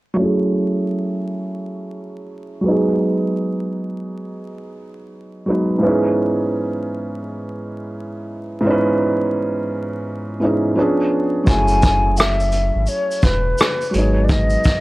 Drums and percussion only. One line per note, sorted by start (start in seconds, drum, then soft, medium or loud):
11.47 kick medium
11.47 shaker soft
11.68 shaker soft
11.82 kick medium
11.82 closed hi-hat medium
11.82 shaker soft
12.17 cross-stick loud
12.17 shaker medium
12.40 shaker soft
12.52 closed hi-hat medium
12.52 shaker soft
12.87 shaker medium
13.11 shaker soft
13.22 kick medium
13.22 closed hi-hat medium
13.22 shaker soft
13.58 cross-stick loud
13.58 shaker medium
13.81 shaker soft
13.94 closed hi-hat medium
13.94 shaker soft
14.29 kick loud
14.29 shaker soft
14.50 shaker soft
14.64 kick medium
14.64 closed hi-hat medium
14.64 shaker soft